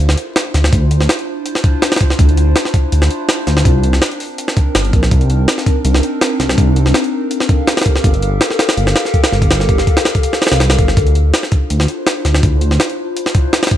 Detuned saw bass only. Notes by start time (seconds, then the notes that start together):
0.00 D2
0.54 D2
0.73 D2
2.19 D2
2.92 D2
3.47 D2
3.65 C2
4.75 G1
4.93 A#1
5.12 C2
5.85 C2
6.40 C2
6.58 C2
8.04 G1
8.77 G1
9.32 G1
9.50 G1
10.52 C2
10.79 G1
10.97 D2
11.70 D2
12.25 D2
12.43 D2